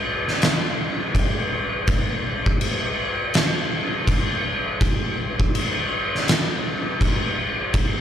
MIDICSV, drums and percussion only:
0, 0, Header, 1, 2, 480
1, 0, Start_track
1, 0, Tempo, 732601
1, 1232, Time_signature, 4, 2, 24, 8
1, 5247, End_track
2, 0, Start_track
2, 0, Title_t, "Drums"
2, 183, Note_on_c, 9, 38, 30
2, 249, Note_off_c, 9, 38, 0
2, 273, Note_on_c, 9, 49, 71
2, 283, Note_on_c, 9, 38, 127
2, 338, Note_off_c, 9, 49, 0
2, 348, Note_off_c, 9, 38, 0
2, 752, Note_on_c, 9, 36, 82
2, 756, Note_on_c, 9, 49, 64
2, 818, Note_off_c, 9, 36, 0
2, 821, Note_off_c, 9, 49, 0
2, 1228, Note_on_c, 9, 49, 68
2, 1230, Note_on_c, 9, 36, 112
2, 1294, Note_off_c, 9, 49, 0
2, 1296, Note_off_c, 9, 36, 0
2, 1614, Note_on_c, 9, 36, 90
2, 1679, Note_off_c, 9, 36, 0
2, 1709, Note_on_c, 9, 49, 73
2, 1775, Note_off_c, 9, 49, 0
2, 2187, Note_on_c, 9, 49, 79
2, 2197, Note_on_c, 9, 38, 125
2, 2253, Note_off_c, 9, 49, 0
2, 2262, Note_off_c, 9, 38, 0
2, 2670, Note_on_c, 9, 36, 80
2, 2670, Note_on_c, 9, 49, 65
2, 2735, Note_off_c, 9, 36, 0
2, 2735, Note_off_c, 9, 49, 0
2, 3151, Note_on_c, 9, 36, 106
2, 3153, Note_on_c, 9, 49, 63
2, 3217, Note_off_c, 9, 36, 0
2, 3219, Note_off_c, 9, 49, 0
2, 3536, Note_on_c, 9, 36, 87
2, 3601, Note_off_c, 9, 36, 0
2, 3635, Note_on_c, 9, 49, 69
2, 3701, Note_off_c, 9, 49, 0
2, 4030, Note_on_c, 9, 38, 31
2, 4096, Note_off_c, 9, 38, 0
2, 4114, Note_on_c, 9, 49, 73
2, 4124, Note_on_c, 9, 38, 124
2, 4180, Note_off_c, 9, 49, 0
2, 4189, Note_off_c, 9, 38, 0
2, 4593, Note_on_c, 9, 36, 76
2, 4596, Note_on_c, 9, 49, 64
2, 4658, Note_off_c, 9, 36, 0
2, 4661, Note_off_c, 9, 49, 0
2, 5069, Note_on_c, 9, 49, 64
2, 5072, Note_on_c, 9, 36, 104
2, 5134, Note_off_c, 9, 49, 0
2, 5137, Note_off_c, 9, 36, 0
2, 5247, End_track
0, 0, End_of_file